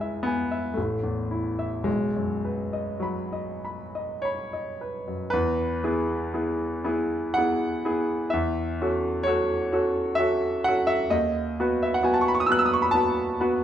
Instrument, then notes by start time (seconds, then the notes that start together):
grand piano
Already playing: C#2 G#2 G#3 E4 G#5
0.00 E5
0.23 B3 G#5
0.51 E5
0.74 A1 A3
1.03 E2
1.31 E4
1.59 E5
1.83 B1 G#3
2.16 F#2
2.45 B4
2.73 D#5
3.00 F#3 B5
3.33 D#5
3.65 B5
3.95 D#5
4.22 C#5 B5
4.53 D#5
4.81 B4
5.08 F#2
5.30 E2 B4
5.84 B3 E4 G#4
6.34 B3 E4 G#4
6.84 B3 E4 G#4
7.34 B3 E4 F#5
7.38 G#4
7.85 B3 E4 G#4
8.30 E2 E5
8.81 C#4 F#4 A4
9.23 C#4 F#4 A4 C#5
9.72 C#4 F#4 A4
10.15 C#4 F#4 E5
10.20 A4
10.64 C#4 F#4 A4 F#5
10.87 E5
11.10 D#2 D#5
11.60 B3 F#4 B4
11.83 E5
11.94 F#5
12.03 B3 F#4 B4 G#5
12.14 A5
12.21 C#6
12.28 B5
12.35 C#6
12.40 D#6
12.46 B3 F#4 B4 E6
12.52 F#6
12.59 E6
12.66 D#6
12.73 C#6
12.82 B5
12.91 B3 F#4 A5
12.95 B4
13.40 B3 F#4 B4